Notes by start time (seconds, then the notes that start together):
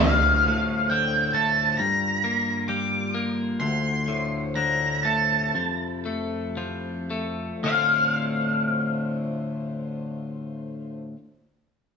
0.01 D2 D3 F4 C5 F5
0.48 A2
0.90 D3 G5
1.33 A3 A5
1.77 G2 D3 A#4 A#5
2.24 A#3
2.68 G3 D6
3.14 A#3
3.60 D2 C5 C6
4.08 A2
4.55 D3 A#5
5.03 A3 A5
5.54 F2 C3 E4 A4
6.05 A3
6.57 F3
7.10 A3
7.63 D2 A2 D3 A3 C4 F4 C5 F5
7.68 F4